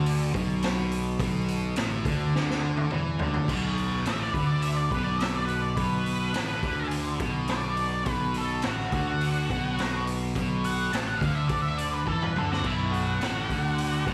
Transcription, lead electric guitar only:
4.09 E5
4.19 D5
4.34 B4
4.46 D5
4.62 E5
4.77 D5
4.91 B4
5.04 D5
5.16 E5
5.34 D5
5.45 B4
5.62 D5
5.76 B4
7.50 D5
8.10 B4
8.38 A4
8.65 F#4
8.94 F#4
10.65 F#5
10.93 A5
11.07 F#5
11.18 F5
11.35 E5
11.48 D5
11.62 E5
11.78 D5
11.93 B4
12.07 A4
12.22 B4
12.38 A4
12.51 F#4
12.67 E4
12.91 F#4

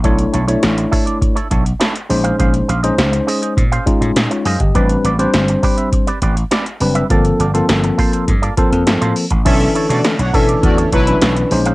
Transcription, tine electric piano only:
0.04 A3 D4 E4 C#5
0.48 A3 D4 E4 C#5
2.10 G#3 C#4 D#4 C5
2.84 G#3 C#4 D#4 C5
3.86 G#3 C#4 D#4 F4
4.31 F4 C#5
4.45 G#4 F5
4.60 G4 D#5
4.75 G3 C4 D4 B4
5.19 G3 C4 D4 C5
6.80 G3 C4 D4 B4
7.10 F3 A#3 C4 A4
7.54 F3 A#3 C4 A4
8.57 F3 A#3 C4 A4
9.45 E3 C#4 D4 A4
10.34 E3 C#4 D4 A4
11.07 E3 C#4 D4 B4
11.51 G#3 C#4 D#4 C5

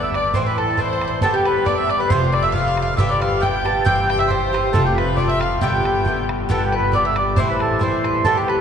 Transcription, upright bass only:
Already playing: G1
0.35 A1
1.23 G1
2.10 F1
2.98 G1
3.86 G1
4.74 F1
5.62 G1
6.49 G1
7.37 A1
8.25 G1

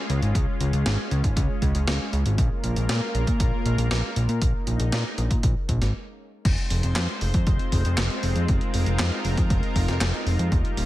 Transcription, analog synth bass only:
0.10 C#2
0.22 G#1
0.35 C#2
0.60 C#2
0.73 C#2
0.86 G#1
1.11 C#2
1.24 G#1
1.37 C#2
1.62 C#2
1.75 C#2
1.87 C#2
2.13 C#2
2.26 G#1
2.38 A#1
2.64 A#1
2.76 A#1
2.89 A#2
3.15 A#1
3.27 A#2
3.40 A#1
3.65 A#1
3.78 A#1
3.91 A#1
4.16 A#1
4.29 A#2
4.42 A#1
4.67 A#1
4.80 A#1
4.92 A#2
5.18 A#1
5.31 A#2
5.43 A#1
5.69 A#1
5.82 G#1
6.45 F1
6.71 F1
6.83 F1
6.96 F2
7.22 F1
7.34 F2
7.47 F1
7.72 F1
7.85 F1
7.98 F1
8.23 F1
8.36 F2
8.49 F1
8.74 F1
8.87 F1
8.99 F2
9.25 F1
9.37 F2
9.50 F1
9.76 F1
9.88 F1
10.01 F1
10.26 F1
10.39 F2
10.52 D#1
10.77 D#1

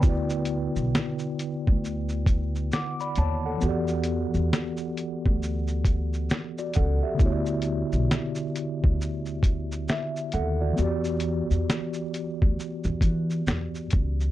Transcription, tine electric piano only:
Already playing: B4 G5
0.00 D3 B3 E4
0.07 F#4 D5
2.73 F#5 D6
3.00 D5 B5
3.18 C#5 A5
3.46 A4 F#5
3.58 E3 B3
3.63 F#4 G4
3.69 D5
6.59 F#4 D5
6.76 A4 F#5
7.03 G4 E5
7.15 D3 B3
7.20 E4 F#4
7.26 C#5
7.32 D5
9.89 E5
10.34 A4 F#5
10.61 F#4 D5
10.73 E3 B3
10.79 F#4 G4
10.84 D5

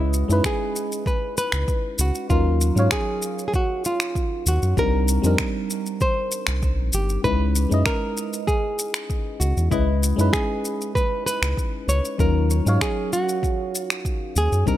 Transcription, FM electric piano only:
Already playing: G#3 C#4 E4 B4 D#5
0.28 G#3 C#4 D#4 E4
0.33 B4
2.30 F#3 C#4 D#4 F4 A#4
2.75 F#3 C#4 D#4 F5
2.79 C#5
4.77 G3 C4 D4 D#4 A#4
5.22 G3 C4 D4 D#4
5.27 A#4
7.24 G#3 C#4 D#4 E4 B4
7.69 G#3 C#4 D#4 E4
7.74 D#5
9.71 G#3 C#4 E4 B4 D#5
10.16 G#3 C#4 D#4 E4
10.21 B4
12.18 F#3 C#4 D#4 F4 A#4
12.65 F#3 C#4 D#4 F5
12.69 C#5
14.66 G3 C4 D4 D#4 A#4

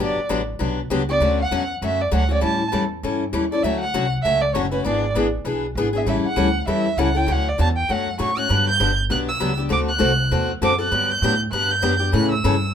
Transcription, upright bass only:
0.00 G1
0.17 muted upright bass stroke
0.29 A1
0.60 B1
0.90 C#2
1.20 D2
1.51 E2
1.82 F#2
2.12 D2
2.43 A2
2.73 E2
3.03 G2
3.33 D#2
3.63 D2
3.94 C2
4.25 C#2
4.54 F#1
4.85 G#1
5.14 A1
5.45 B1
5.75 G#1
6.06 A1
6.24 muted upright bass stroke
6.36 D2
6.67 E2
6.97 C#2
7.27 D2
7.59 E2
7.89 F#2
8.20 A2
8.50 G2
8.80 G1
9.09 B1
9.41 C#2
9.70 D2
10.00 C2
10.31 E2
10.61 F#2
10.92 G2
11.22 A2
11.52 G2
11.83 F#2
12.13 A2
12.44 G2

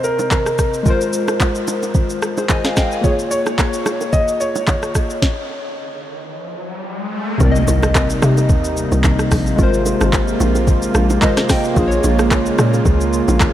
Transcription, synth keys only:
Already playing: C3 C4 A#4 D#5
0.83 G#3 F4
0.88 A#4 C5
2.38 G#4 C5
2.50 C5 D#5 G#5
2.65 F5
2.77 D#5 F5 G5
2.93 F5 G#5
3.01 A#3 F4
3.06 G#4 C#5
7.38 C3 C4
7.43 A#4 D5
7.51 D#5
9.56 G#3 F4
9.61 A#4 C5
11.21 G#3 F4 A#4 C5 D#5
11.51 G5
11.74 A#3 F4
11.79 G#4 C5
11.88 C#5

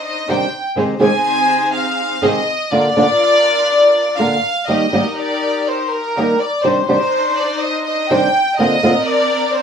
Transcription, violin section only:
0.05 D#5
0.30 G5
1.01 G#5
1.74 F5
2.23 D#5
2.71 D5
4.17 F5
4.67 D#5
5.16 D5
5.67 C5
5.90 A#4
6.38 D5
6.64 C5
6.87 C5
7.36 D5
7.59 D#5
7.84 D#5
8.09 G5
8.57 D#5
9.06 D5
9.53 C5

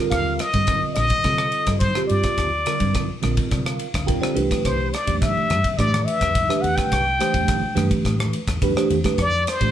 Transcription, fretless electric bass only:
0.12 D#2
0.54 G2
0.83 muted fretless electric bass stroke
0.97 A#1
1.24 C3
1.67 G2
2.10 G2
2.38 D#2
2.80 G2
3.09 muted fretless electric bass stroke
3.24 A#1
3.52 C3
3.94 D2
4.36 C2
4.65 C2
5.07 E2
5.37 muted fretless electric bass stroke
5.50 G2
5.79 A2
6.21 E2
6.64 E2
6.91 C2
7.34 E2
7.63 muted fretless electric bass stroke
7.76 G2
8.05 A2
8.48 E2
8.90 E2
9.18 F2
9.61 A2

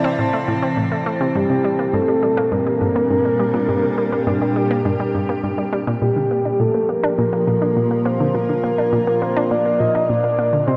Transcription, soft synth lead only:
Already playing: D5
0.20 C5
1.36 G4
1.94 A4
2.52 A#4
6.02 G4
6.60 A4
6.89 A#4
7.18 A#4
8.06 C5
8.34 A#4
9.21 C5
9.51 D5
9.79 D#5
10.09 D5
10.67 C5

